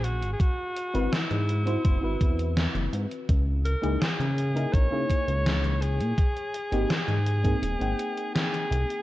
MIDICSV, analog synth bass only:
0, 0, Header, 1, 2, 480
1, 0, Start_track
1, 0, Tempo, 722892
1, 264, Time_signature, 4, 2, 24, 8
1, 5991, End_track
2, 0, Start_track
2, 0, Title_t, "Analog synth bass"
2, 0, Program_c, 0, 38
2, 0, Note_on_c, 0, 34, 105
2, 149, Note_on_c, 0, 32, 90
2, 159, Note_off_c, 0, 34, 0
2, 235, Note_off_c, 0, 32, 0
2, 627, Note_on_c, 0, 32, 97
2, 714, Note_off_c, 0, 32, 0
2, 866, Note_on_c, 0, 44, 89
2, 1175, Note_off_c, 0, 44, 0
2, 1227, Note_on_c, 0, 30, 106
2, 1315, Note_off_c, 0, 30, 0
2, 1346, Note_on_c, 0, 32, 82
2, 1434, Note_off_c, 0, 32, 0
2, 1465, Note_on_c, 0, 40, 79
2, 1775, Note_off_c, 0, 40, 0
2, 1823, Note_on_c, 0, 30, 86
2, 1912, Note_off_c, 0, 30, 0
2, 1944, Note_on_c, 0, 44, 93
2, 2033, Note_off_c, 0, 44, 0
2, 2186, Note_on_c, 0, 37, 99
2, 2495, Note_off_c, 0, 37, 0
2, 2548, Note_on_c, 0, 37, 93
2, 2635, Note_off_c, 0, 37, 0
2, 2785, Note_on_c, 0, 49, 87
2, 3094, Note_off_c, 0, 49, 0
2, 3144, Note_on_c, 0, 34, 101
2, 3233, Note_off_c, 0, 34, 0
2, 3264, Note_on_c, 0, 49, 97
2, 3353, Note_off_c, 0, 49, 0
2, 3504, Note_on_c, 0, 37, 103
2, 3985, Note_on_c, 0, 46, 90
2, 3995, Note_off_c, 0, 37, 0
2, 4073, Note_off_c, 0, 46, 0
2, 4464, Note_on_c, 0, 32, 94
2, 4553, Note_off_c, 0, 32, 0
2, 4701, Note_on_c, 0, 44, 91
2, 5012, Note_off_c, 0, 44, 0
2, 5062, Note_on_c, 0, 27, 107
2, 5152, Note_off_c, 0, 27, 0
2, 5183, Note_on_c, 0, 32, 82
2, 5272, Note_off_c, 0, 32, 0
2, 5783, Note_on_c, 0, 36, 109
2, 5873, Note_off_c, 0, 36, 0
2, 5991, End_track
0, 0, End_of_file